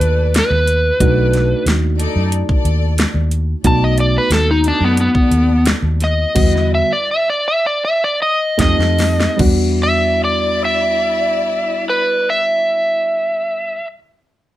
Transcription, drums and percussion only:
0.01 closed hi-hat
0.34 snare, closed hi-hat
0.67 closed hi-hat
1.00 kick, closed hi-hat
1.33 snare, closed hi-hat
1.67 snare, closed hi-hat
2.00 closed hi-hat
2.32 closed hi-hat
2.49 kick
2.65 closed hi-hat
2.98 snare, closed hi-hat
3.31 closed hi-hat
3.64 kick, closed hi-hat
3.98 closed hi-hat
4.31 snare, closed hi-hat
4.64 closed hi-hat
4.97 closed hi-hat
5.15 kick
5.32 closed hi-hat
5.66 snare, closed hi-hat
6.00 snare, closed hi-hat
6.36 kick, closed hi-hat, crash
6.55 snare
8.59 kick, snare, closed hi-hat
8.80 snare
8.99 snare, open hi-hat
9.20 snare
9.39 kick, crash

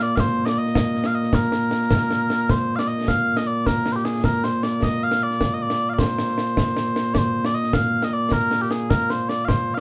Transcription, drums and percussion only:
0.17 concert bass drum, snare
0.46 snare
0.66 snare
0.75 concert bass drum, snare
0.95 snare
1.04 snare
1.23 snare
1.33 concert bass drum, snare
1.52 snare
1.71 snare
1.81 snare
1.91 concert bass drum, snare
2.11 snare
2.30 snare
2.49 concert bass drum, snare
2.79 snare
2.98 snare
3.08 concert bass drum, snare
3.37 snare
3.67 concert bass drum, snare
3.86 snare
3.96 snare
4.05 snare
4.24 concert bass drum, snare
4.44 snare
4.63 snare
4.83 concert bass drum, snare
5.11 snare
5.31 snare
5.41 concert bass drum, snare
5.70 snare
5.98 concert bass drum, snare
6.18 snare
6.28 snare
6.38 snare
6.57 concert bass drum, snare
6.77 snare
6.96 snare
7.15 concert bass drum, snare
7.45 snare
7.63 snare
7.73 concert bass drum, snare
8.02 snare
8.31 concert bass drum, snare
8.51 snare
8.62 snare
8.71 snare
8.91 concert bass drum, snare
9.10 snare
9.29 snare
9.48 concert bass drum, snare

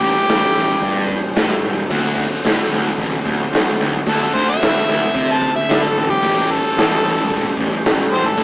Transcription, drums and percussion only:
0.01 kick
0.28 snare, open hi-hat
0.82 kick, open hi-hat
1.09 kick
1.35 snare, open hi-hat
1.76 kick
1.89 kick, open hi-hat
2.17 kick
2.45 snare, open hi-hat
2.98 kick, open hi-hat
3.26 kick
3.53 snare, open hi-hat
3.93 kick
4.07 kick, open hi-hat
4.34 kick
4.61 snare, open hi-hat
5.15 kick, open hi-hat
5.42 kick
5.69 snare, open hi-hat
6.09 kick
6.23 kick, open hi-hat
6.50 kick
6.77 snare, open hi-hat
7.30 kick, open hi-hat
7.57 kick
7.84 snare, open hi-hat
8.24 kick
8.38 kick, open hi-hat

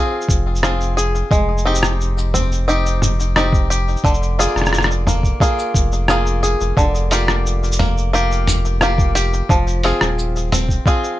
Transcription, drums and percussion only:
0.21 cabasa
0.29 kick, cabasa
0.56 cabasa
0.63 cross-stick, cabasa
0.81 cabasa
0.98 cabasa
1.15 cabasa
1.31 kick, cabasa
1.58 cabasa
1.75 cabasa
1.83 cross-stick, cabasa
2.01 cabasa
2.18 cabasa
2.34 mid tom, cabasa
2.52 cabasa
2.69 cabasa
2.86 cabasa
3.02 mid tom, cabasa
3.20 cabasa
3.36 cross-stick, cabasa
3.53 kick, cabasa
3.71 cabasa
3.88 cabasa
3.97 cabasa
4.04 kick, cabasa
4.14 cabasa
4.23 cabasa
4.40 cabasa
4.56 cross-stick, cabasa
4.62 cross-stick, cabasa
4.67 cross-stick
4.73 cross-stick, cabasa
4.79 cross-stick, cabasa
4.84 cross-stick
4.91 cabasa
5.07 mid tom, cabasa
5.23 kick, cabasa
5.40 kick, cabasa
5.59 cabasa
5.74 kick, cabasa
5.92 cabasa
6.08 cross-stick, cabasa
6.26 cabasa
6.44 cabasa
6.61 cabasa
6.77 kick, cabasa
6.95 cabasa
7.11 open hi-hat, cabasa
7.28 cross-stick, cabasa
7.46 cabasa
7.63 cabasa
7.72 cabasa
7.80 mid tom, open hi-hat
7.98 cabasa
8.15 cabasa
8.32 cabasa
8.47 mid tom, open hi-hat, cabasa
8.65 cabasa
8.81 cross-stick, cabasa
8.98 kick, cabasa
9.15 open hi-hat, cabasa
9.33 cabasa
9.49 kick, cabasa
9.67 cabasa
9.83 open hi-hat
10.01 cross-stick, cabasa
10.19 cabasa
10.36 cabasa
10.52 mid tom, open hi-hat, cabasa
10.69 kick, cabasa
10.86 kick, cabasa
11.04 cabasa

